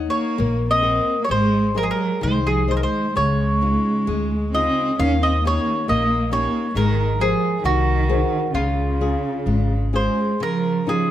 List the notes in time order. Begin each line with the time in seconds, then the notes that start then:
Already playing: D#4 C#5 D#5 F#5
0.09 A#3 C#5
0.38 A#1 A#3
0.69 C4 D#5
0.82 A#4 D#5 F#5
1.21 A#3 C#5
1.29 G#1 G#3 C5
1.75 F#3 G#4 A#4 C5 D#5
1.82 F3 G#4
1.90 F#3 A#4
2.21 C2 D#3 G#3 C5
2.45 F3 G#4
2.67 G#3 G#4 C5 D#5
2.72 F#3
2.77 A#4
2.82 G#3 C5
3.13 C#2 C#3 G#3 C#5
3.62 C#4 D#4 F4
4.07 D2 G#3
4.52 C#3 C4 D#4 F4 D#5
4.99 D#2 D#3 C#4 F5
5.21 C4 D#5
5.44 A#3 C#4 D#4 G4 C#5
5.87 A#1 A#3 D#5
6.31 A#3 C#4 D#4 G4 C#5
6.75 G#1 D#3 G#3 A#4
7.18 F3 G#4 A#4 C5
7.61 C2 D#3
7.65 F#4
8.09 G#4 A#4 C5
8.52 C#2 C#3 F4
9.01 C#4 F4 G#4
9.46 G#1 G#3
9.93 G#3 C#4 F4 G#4 C5
10.40 C#3 F3 A#4
10.87 F3 C#4 D#4 F4 G#4